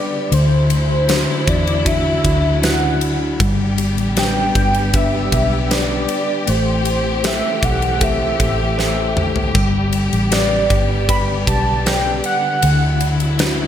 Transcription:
Already playing: string section D3 G3 B3 G4, tine electric piano G3 D4 G4 B4, soft synth lead D5
0.32 fingered electric bass D2, tine electric piano D3, string section F#3 A3 E4, soft synth lead C5, ride
0.70 ride
1.08 tine electric piano D4 E4 F#4, snare, ride
1.48 fingered electric bass E2, soft synth lead D5, kick, ride
1.67 ride
1.85 tine electric piano D4 E4 F#4, soft synth lead E5, kick, ride
2.25 fingered electric bass D2, kick, ride
2.62 tine electric piano D4 E4 F#4, soft synth lead F#5, snare, ride
3.01 ride
3.39 fingered electric bass G1, string section G3 B3 G4, tine electric piano G3, kick, ride
3.78 ride
3.97 fingered electric bass A1, ride
4.17 tine electric piano D4 G4 B4, soft synth lead G5, snare, ride
4.55 fingered electric bass G1, kick, ride
4.74 ride
4.93 tine electric piano D4 G4 B4, soft synth lead E5, kick, ride
5.32 fingered electric bass B1, kick, ride
5.70 tine electric piano D4 G4 B4, soft synth lead D5, snare, ride
6.09 ride
6.47 fingered electric bass A1, string section E3 A3 C4, tine electric piano A3, soft synth lead C5, ride
6.85 ride
7.24 tine electric piano G4 A4 C5, soft synth lead E5, snare, ride
7.63 fingered electric bass B1, soft synth lead F#5, kick, ride
7.82 ride
8.01 tine electric piano G4 A4 C5, soft synth lead E5, kick, ride
8.40 fingered electric bass A1, kick, ride
8.78 tine electric piano G4 A4 C5, soft synth lead E5, snare
9.17 mid tom
9.36 floor tom
9.55 fingered electric bass G1, string section D3 G3 B3, tine electric piano G3, kick, splash
9.93 ride
10.13 fingered electric bass A1, ride
10.31 tine electric piano G4 B4 D5, soft synth lead D5, snare, ride
10.70 fingered electric bass G1, kick, ride
11.08 tine electric piano G4 B4 D5, soft synth lead B5, kick, ride
11.47 fingered electric bass B1, soft synth lead A5, kick, ride
11.86 tine electric piano G4 B4 D5, soft synth lead G5, snare, ride
12.24 soft synth lead F#5, ride
12.62 fingered electric bass D2, tine electric piano D3, string section F#3 A3 E4, ride
13.01 ride
13.20 ride
13.39 tine electric piano D4 E4 F#4, snare, ride

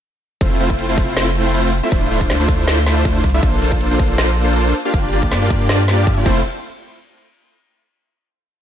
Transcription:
0.41 sub bass F1, supersaw synth A3 C4 E4 F4 C5, kick, closed hi-hat
0.60 supersaw synth A3 C4 E4 F4 C5, closed hi-hat
0.70 kick
0.79 closed hi-hat
0.89 supersaw synth A3 C4 E4 F4 C5, closed hi-hat
0.93 closed hi-hat
0.98 kick, open hi-hat
1.16 supersaw synth A3 C4 E4 F4 C5, snare, closed hi-hat
1.35 closed hi-hat
1.54 supersaw synth A3 C4 E4 F4 C5, closed hi-hat
1.73 closed hi-hat
1.78 closed hi-hat
1.83 supersaw synth A3 C4 E4 F4 E5
1.92 sub bass D1, supersaw synth A3 D4 E4 F4 C5, kick, closed hi-hat
2.11 supersaw synth A3 D4 E4 F4 C5, closed hi-hat
2.21 kick
2.30 sub bass D2, snare, closed hi-hat
2.40 supersaw synth A3 D4 E4 F4 C5, closed hi-hat
2.44 closed hi-hat
2.49 kick, open hi-hat
2.67 supersaw synth A3 D4 E4 F4 C5, snare, closed hi-hat
2.87 snare, closed hi-hat
3.05 supersaw synth A3 D4 E4 F4 C5, kick, closed hi-hat
3.24 sub bass C2, kick, closed hi-hat
3.29 closed hi-hat
3.34 supersaw synth A3 D4 E4 F4 E5
3.43 sub bass A#1, supersaw synth A#3 D4 A4, kick, closed hi-hat
3.62 supersaw synth A#3 D4 F4 A4 C5, closed hi-hat
3.72 kick
3.81 closed hi-hat
3.91 supersaw synth A#3 D4 F4 A4 C5, closed hi-hat
3.95 closed hi-hat
3.99 kick, open hi-hat
4.18 supersaw synth A#3 D4 F4 A4 C5, snare, closed hi-hat
4.37 closed hi-hat
4.56 supersaw synth A#3 D4 F4 A4 C5, closed hi-hat
4.75 closed hi-hat
4.80 closed hi-hat
4.85 supersaw synth A#3 D4 F4 G4 F5
4.94 sub bass G1, supersaw synth A#3 D4, kick, closed hi-hat
5.13 supersaw synth A#3 D4 F4 G4 D5, closed hi-hat
5.23 kick
5.31 sub bass G2, snare, closed hi-hat
5.42 supersaw synth A#3 D4 F4 G4 D5, closed hi-hat
5.46 closed hi-hat
5.50 kick, open hi-hat
5.69 supersaw synth A#3 D4 F4 G4 D5, snare, closed hi-hat
5.88 snare, closed hi-hat
6.07 supersaw synth A#3 D4 F4 G4 E5, kick, closed hi-hat
6.17 supersaw synth A#3 D4 F4 G4 D5
6.26 sub bass F1, supersaw synth A3 C4 E4 F4 C5, kick, crash

